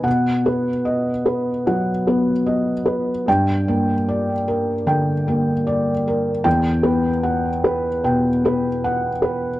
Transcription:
<<
  \new Staff \with { instrumentName = "Felt piano" } { \time 4/4 \key b \phrygian \tempo 4 = 75 << { fis''4 r2. | g''4 r2. | g''4 r2. | } \\ { r8 b'8 dis''8 b'8 fis''8 b'8 dis''8 b'8 | r8 bes'8 d''8 bes'8 g''8 bes'8 d''8 bes'8 | r8 b'8 fis''8 b'8 g''8 b'8 fis''8 b'8 | } >> }
  \new Staff \with { instrumentName = "Felt piano" } { \clef bass \time 4/4 \key b \phrygian b,8 b4 r8 fis8 b4 r8 | g,8 bes4 r8 d8 bes4 r8 | e,8 b4 r8 b,8 b4 r8 | }
>>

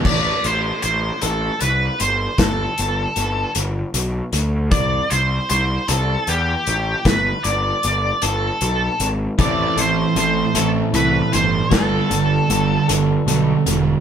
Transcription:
<<
  \new Staff \with { instrumentName = "Lead electric guitar" } { \time 6/8 \key a \dorian \tempo 4. = 51 d''8 c''8 c''8 a'8 b'8 c''8 | a'4. r4. | d''8 c''8 c''8 a'8 g'4 | b'8 d''4 a'4 r8 |
d''8 c''8 c''8 a'8 b'8 c''8 | a'4. r4. | }
  \new Staff \with { instrumentName = "Clean electric guitar" } { \time 6/8 \key a \dorian r2. | r2. | r2. | r2. |
<e c' e' a'>8 <e c' e' a'>8 <e c' e' a'>8 <e c' e' a'>8 <e c' e' a'>8 r8 | <g b d' a'>8 <g b d' a'>8 <g b d' a'>8 <g b d' a'>8 <g b d' a'>8 r8 | }
  \new Staff \with { instrumentName = "Distorted electric guitar" } { \clef bass \time 6/8 \key a \dorian r2. | r2. | r2. | r2. |
<a, e a>8 <a, e>8 <a, e>8 <a, e>8 <a, e>8 <a, e>8 | <g, d g>8 <g, d>8 <g, d>8 <g, d>8 <g, d>8 <g, d>8 | }
  \new Staff \with { instrumentName = "Picked electric bass" } { \clef bass \time 6/8 \key a \dorian a,,8 a,,8 a,,8 a,,8 c,8 g,,8 | g,,8 g,,8 g,,8 g,,8 b,,8 d,8 | c,8 c,8 c,8 c,8 e,8 a,,8 | g,,8 g,,8 g,,8 g,,8 b,,8 gis,,8 |
a,,8 a,,8 a,,8 a,,8 c,8 g,,8 | g,,8 g,,8 g,,8 g,,8 b,,8 e,,8 | }
  \new DrumStaff \with { instrumentName = "Drums" } \drummode { \time 6/8 <cymc bd>8 hh8 hh8 hh8 hh8 hh8 | <hh bd sn>8 hh8 hh8 hh8 hh8 hh8 | <hh bd>8 hh8 hh8 hh8 hh8 hh8 | <hh bd sn>8 hh8 hh8 hh8 hh8 hh8 |
<hh bd>8 hh8 hh8 hh8 hh8 hh8 | <hh bd sn>8 hh8 hh8 hh8 hh8 hh8 | }
>>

